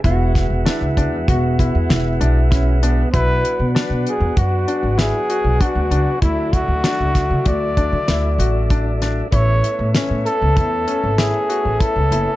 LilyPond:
<<
  \new Staff \with { instrumentName = "Trumpet" } { \time 5/4 \key b \dorian \tempo 4 = 97 r1 r4 | b'4 r8 gis'8 fis'4 gis'4 fis'4 | e'8 fis'4. d''2~ d''8 r8 | cis''4 r8 a'4. gis'4 a'4 | }
  \new Staff \with { instrumentName = "Clean electric guitar" } { \time 5/4 \key b \dorian fis'4 e'4 fis'4 e'4 cis'8 b8 | r1 r4 | r1 r4 | r1 r4 | }
  \new Staff \with { instrumentName = "Grand piano" } { \time 5/4 \key b \dorian e'4 d'8 d'8 fis'8 e'4 d'8 e'8 d'8 | e'4 d'4 fis'8 d'8 e'8 fis'8 d'8 d'8 | e'4 d'4 fis'8 d'8 e'8 fis'8 d'8 d'8 | e'4 cis'4 e'8 cis'8 e'8 fis'8 e'8 e'8 | }
  \new Staff \with { instrumentName = "Tonewheel organ" } { \time 5/4 \key b \dorian <gis b e' fis'>1~ <gis b e' fis'>4 | <fis b d' fis'>1~ <fis b d' fis'>4 | <fis a d' e'>1~ <fis a d' e'>4 | <a b cis' e'>1~ <a b cis' e'>4 | }
  \new Staff \with { instrumentName = "Upright bass" } { \clef bass \time 5/4 \key b \dorian e,,8. e,,16 r16 cis,8 e,16 e,,8. e,16 e,,8 b,,4. | b,,8 r16 b,16 r16 b,16 r16 e,16 fis,8 r16 gis,,8 r8 b,,16 r16 d,16 cis,16 r16 | d,8. d,16 r16 cis,8 d16 d,8. d16 d,8 a,,4. | a,,8 r16 a,16 r16 a,16 r16 cis,16 e,8 r16 gis,,8 r8 a,,16 r16 cis,16 fis,,16 r16 | }
  \new DrumStaff \with { instrumentName = "Drums" } \drummode { \time 5/4 <hh bd>8 <hh bd sn>8 <hh sn>8 <hh bd>8 <hh bd>8 <hh bd>8 <hh sn>8 hh8 <hh bd sn>8 hh8 | <hh bd>8 hh8 <hh sn>8 hh8 <hh bd>8 hh8 <hh sn>8 hh8 <hh bd>8 hh8 | <hh bd>8 <hh bd>8 <hh sn>8 <hh bd sn>8 <hh bd>8 <hh bd>8 <hh sn>8 hh8 <hh bd>8 <hh sn>8 | <hh bd>8 hh8 <hh sn>8 hh8 <hh bd>8 hh8 <hh sn>8 hh8 <hh bd>8 hh8 | }
>>